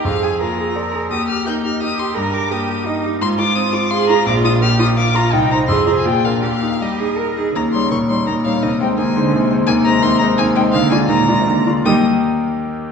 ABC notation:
X:1
M:3/4
L:1/16
Q:1/4=169
K:Eb
V:1 name="Violin"
f2 a2 b6 z2 | e'2 f'2 g'2 f'2 e'2 c'2 | b2 d'2 e'6 z2 | c'2 d'2 e'2 d'2 c'2 b2 |
d'2 e'2 f'2 e'2 d'2 b2 | g2 b2 c'2 b a g2 f2 | f4 e6 z2 | b2 c'2 _d'2 c'2 b2 f2 |
e2 g2 a6 z2 | a2 b2 c'2 b2 a2 g2 | f2 a2 b6 z2 | e'2 z8 z2 |]
V:2 name="Cello"
A4 F4 B4 | G4 E4 G4 | B4 G4 E4 | F8 A4 |
F4 G4 F4 | E4 A4 F4 | G4 G2 A2 B2 A2 | _D,4 B,,4 B,,4 |
C,4 E,2 D,2 C,4 | C,12 | D,4 B,,2 C,2 D,2 z2 | G,2 z8 z2 |]
V:3 name="Grand piano"
F,,2 A2 B,2 A2 d2 A2 | E,,2 G2 B,2 G2 e2 G2 | G,,2 G2 B,2 G2 e2 G2 | A,,2 F2 C2 F2 f2 F2 |
B,,,2 F2 B,2 F2 f2 F2 | C,,2 [Ec]2 F,,2 [Fc]2 B,,2 [DB]2 | E,,2 E2 G,2 E2 B2 E2 | [E,,E,]2 [G,E_d]2 [E,,E,]2 [G,Ed]2 [E,,E,]2 [G,Ed]2 |
[E,,E,]2 [A,Ec]2 [E,,E,]2 [A,Ec]2 [E,,E,]2 [A,Ec]2 | [E,,E,]2 [A,Ec]2 [E,,E,]2 [A,Ec]2 [E,,E,]2 [A,Ec]2 | [E,,E,]2 [A,Fd]2 [E,,E,]2 [A,Fd]2 [E,,E,]2 [A,Fd]2 | [E,,E,B,Geg]2 z8 z2 |]